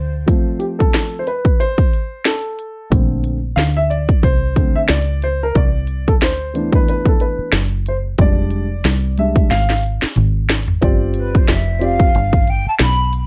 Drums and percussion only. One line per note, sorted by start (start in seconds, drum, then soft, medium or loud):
0.28 kick loud
0.28 closed hi-hat medium
0.60 closed hi-hat medium
0.80 kick medium
0.94 snare medium
0.94 closed hi-hat medium
1.27 closed hi-hat medium
1.45 kick medium
1.61 closed hi-hat medium
1.78 kick medium
1.94 closed hi-hat medium
2.25 snare medium
2.25 closed hi-hat medium
2.59 closed hi-hat medium
2.92 kick loud
2.92 closed hi-hat loud
3.24 closed hi-hat medium
3.58 snare loud
3.58 closed hi-hat medium
3.91 closed hi-hat medium
4.09 kick medium
4.23 kick medium
4.23 closed hi-hat loud
4.56 kick medium
4.56 closed hi-hat medium
4.89 snare loud
4.89 closed hi-hat medium
5.22 closed hi-hat medium
5.55 kick loud
5.55 closed hi-hat loud
5.87 closed hi-hat medium
6.08 kick medium
6.22 snare medium
6.22 closed hi-hat medium
6.55 closed hi-hat medium
6.73 kick medium
6.88 closed hi-hat loud
7.05 kick medium
7.20 closed hi-hat medium
7.52 snare loud
7.52 closed hi-hat medium
7.86 closed hi-hat medium
8.18 kick loud
8.18 closed hi-hat medium
8.51 closed hi-hat medium
8.85 snare loud
8.85 closed hi-hat medium
9.18 closed hi-hat medium
9.36 kick medium
9.51 snare medium
9.51 closed hi-hat loud
9.70 snare medium
9.83 closed hi-hat medium
10.02 snare medium
10.16 closed hi-hat medium
10.16 mid tom medium
10.49 snare loud
10.49 closed hi-hat medium
10.68 floor tom medium
10.82 kick loud
10.82 closed hi-hat loud
11.14 closed hi-hat medium
11.35 kick loud
11.48 snare medium
11.48 closed hi-hat medium
11.82 closed hi-hat medium
12.00 kick medium
12.15 closed hi-hat medium
12.33 kick medium
12.47 closed hi-hat medium
12.79 snare loud
12.79 closed hi-hat medium
13.13 closed hi-hat medium